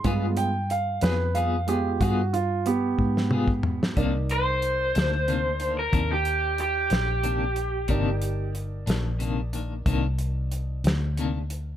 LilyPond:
<<
  \new Staff \with { instrumentName = "Overdriven electric guitar" } { \time 12/8 \key c \minor \tempo 4. = 61 r1. | r8 c''2~ c''16 bes'8 g'8. g'2~ | g'4 r1 r4 | }
  \new Staff \with { instrumentName = "Grand piano" } { \time 12/8 \key c \minor <aes b f'>8 g''8 f''8 b'8 f''8 <aes b f' g'>8 fis'8 f'8 <b g'>2 | <ees' bes' d''>1. | <ees' bes' d''>1. | }
  \new Staff \with { instrumentName = "Clean electric guitar" } { \time 12/8 \key c \minor <g b f' aes'>8 r4 <b f' aes'>8 <g b f' aes'>8 <b f' aes'>8 <g b f' aes'>8 r4. <g b f' aes'>8 r8 | <c ees bes d'>8 r4 <ees bes d'>8 <c ees bes d'>8 <ees bes d'>8 <c ees bes d'>8 r4. <c ees bes d'>8 r8 | <c ees bes d'>8 r4 <ees bes d'>8 <c ees bes d'>8 <ees bes d'>8 <c ees bes d'>8 r4. <c ees bes d'>8 r8 | }
  \new Staff \with { instrumentName = "Fingered electric bass" } { \clef bass \time 12/8 \key c \minor g,4. f,4. g,4. aes,4. | c,4. d,4. ees,4. bes,,4. | g,,4. bes,,4. c,4. d,4. | }
  \new DrumStaff \with { instrumentName = "Drums" } \drummode { \time 12/8 <hh bd>8 hh8 hh8 <hh sn>8 hh8 hh8 <hh bd>8 hh8 hh8 bd16 sn16 toml16 bd16 tomfh16 sn16 | <hh bd>8 hh8 hh8 <hh sn>8 hh8 hh8 <hh bd>8 hh8 hh8 <hh sn>8 hh8 hh8 | <hh bd>8 hh8 hh8 <hh sn>8 hh8 hh8 <hh bd>8 hh8 hh8 <hh sn>8 hh8 hh8 | }
>>